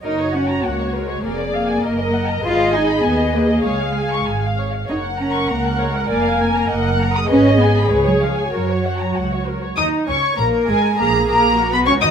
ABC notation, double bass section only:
X:1
M:2/4
L:1/16
Q:1/4=99
K:F#
V:1 name="Double bass section" clef=bass
F,,,4 C,,4 | E,,,4 F,,,4 | G,,,4 D,,4 | C,,4 G,,,4 |
F,,,4 C,,4 | E,,,4 F,,,4 | G,,,4 C,,4 | F,,4 C,,4 |
D,,2 C,,2 A,,,2 G,,,2 | A,,,2 A,,,3 B,,, C,, D,, |]